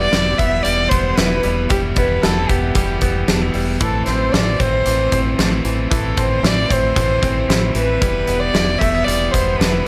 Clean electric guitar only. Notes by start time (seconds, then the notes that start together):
Already playing: G3 B3 E4
0.12 E4
0.39 B3
0.65 G3
0.91 B3
1.19 E4
1.44 G3
1.70 G3 E4
1.96 B3
2.23 E4
2.50 B3
2.76 G3
3.02 B3
3.28 D4
3.42 E4
3.55 G3
3.81 E3 E4
4.07 C4
4.34 D4
4.47 E4
4.60 C4
4.86 E3
5.12 C4
5.39 D4
5.52 E4
5.65 E3
5.91 E3 E4
6.17 C4
6.43 E4
6.70 C4
6.96 E3
7.22 C4
7.49 E4
7.75 E3
8.02 G3 E4
8.28 B3
8.54 E4
8.80 A3
8.95 B3
9.06 G3
9.33 B3
9.59 D4
9.73 E4